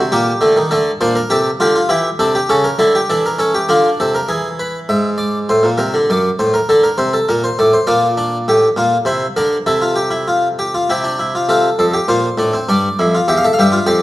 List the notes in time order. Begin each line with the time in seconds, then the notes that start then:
Already playing: C4
0.00 C3
0.12 A#2 A#3 G4
0.41 D3 A3
0.56 D#3
0.71 D3 A3 A4
1.01 A#2 D4 C5
1.16 A#4
1.30 C3 G4 A4
1.60 D3 F4 G4
1.76 F4
1.89 E3 E4 G4
2.19 C3 D4 A4
2.35 G4
2.49 C#3 C#4 A4
2.64 A#4
2.79 D3 E4 A4
2.95 G4
3.10 E3 D4 A4
3.26 A#4
3.39 C#4 A4
3.54 G4
3.69 D3 D4 F4
4.00 C3 A4
4.15 A#4
4.29 E3 G#4
4.59 B4
4.89 G#2 E5
5.18 D5
5.49 A2 C5
5.63 A#2
5.78 C3 A#4
5.94 D3
6.10 F#2 D5
6.39 A2 C5
6.54 A#4
6.69 D3 A4
6.83 A#4
6.98 C3 C5
7.13 A4
7.29 A#2 A#4
7.44 C5
7.59 A2 D5
7.73 C5
7.87 A#2 F4 D5
8.18 D4
8.48 A2 G4
8.76 A#2 F4
9.05 C3 E4 C5
9.36 D3 D4 A#4
9.66 C3 E4 A4
9.81 F4
9.96 G4
10.10 E4
10.28 F4
10.59 G4
10.74 F4
10.90 C3 E4 G4
11.04 D4
11.19 E4
11.35 F4
11.49 C3 F4 A4
11.79 F2 A4
11.93 G4
12.08 A#2 F4 C5
12.38 A2 D4
12.53 C4
12.69 G2 D4 D5
12.99 F2 E4
13.15 F4
13.28 E2 G4 E5
13.37 F5
13.44 A4 E5
13.53 F5
13.59 G2 G4 E5
13.72 F4
13.86 F2 G4 D5